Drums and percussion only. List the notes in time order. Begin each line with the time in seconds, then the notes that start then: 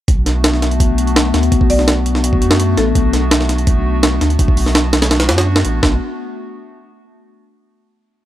0.08 kick, closed hi-hat
0.26 snare, closed hi-hat
0.44 snare, closed hi-hat
0.54 snare
0.62 snare, closed hi-hat
0.71 closed hi-hat
0.80 kick, closed hi-hat
0.98 closed hi-hat
1.07 closed hi-hat
1.16 snare, closed hi-hat
1.34 snare, closed hi-hat
1.43 closed hi-hat
1.52 kick, closed hi-hat
1.61 kick
1.70 open hi-hat
1.79 snare
1.88 snare, closed hi-hat
2.06 closed hi-hat
2.15 snare
2.24 closed hi-hat
2.33 kick
2.42 closed hi-hat
2.51 snare
2.60 closed hi-hat
2.77 snare, closed hi-hat
2.95 kick, closed hi-hat
3.13 snare, closed hi-hat
3.31 snare, closed hi-hat
3.41 snare
3.49 snare, closed hi-hat
3.58 closed hi-hat
3.67 kick, closed hi-hat
4.03 snare, closed hi-hat
4.21 snare, closed hi-hat
4.30 closed hi-hat
4.39 kick, closed hi-hat
4.48 kick
4.57 open hi-hat
4.66 snare
4.75 snare, closed hi-hat
4.93 snare, closed hi-hat
5.02 snare, closed hi-hat
5.11 snare, closed hi-hat
5.20 snare, closed hi-hat
5.29 snare, closed hi-hat
5.38 snare, closed hi-hat
5.56 snare
5.65 closed hi-hat
5.83 kick, snare